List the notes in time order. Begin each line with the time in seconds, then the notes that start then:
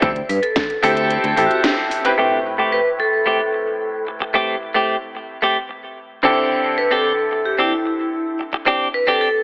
Already playing: C5
0.02 D2 C4 E4 G4 A4, kick, closed hi-hat
0.16 closed hi-hat
0.29 G2 B4, open hi-hat
0.43 A4, closed hi-hat
0.56 kick, snare, closed hi-hat
0.70 closed hi-hat
0.82 D2 C4 E4 G4 A4, open hi-hat
0.97 closed hi-hat
1.10 closed hi-hat
1.24 D2, closed hi-hat
1.28 A4
1.36 A1 C4 E4 G4 A4, open hi-hat
1.46 F#4
1.51 closed hi-hat
1.55 G4
1.64 snare, closed hi-hat
1.91 open hi-hat
2.05 C4 E4 G4 B4, closed hi-hat
2.17 A2 A3 C4 E4 G4 B4
2.58 A3 C4 G4
2.72 B4
2.99 A4, muted clean electric guitar stroke
3.26 A3 C4 G4
3.53 muted clean electric guitar stroke
4.07 muted clean electric guitar stroke
4.20 muted clean electric guitar stroke
4.34 A3 C4 G4
4.74 A3 C4 G4
5.15 muted clean electric guitar stroke
5.42 A3 C4 G4
5.69 muted clean electric guitar stroke
6.23 D3 C4 D4 E4 G4 A4
6.78 B4
6.91 C4 D4 G4 A4
7.31 muted clean electric guitar stroke
7.45 G4
7.58 C4 D4 E4 G4
7.85 muted clean electric guitar stroke
8.39 muted clean electric guitar stroke
8.53 muted clean electric guitar stroke
8.66 C4 D4 G4
8.94 B4
9.07 C4 D4 G4 A4
9.21 A4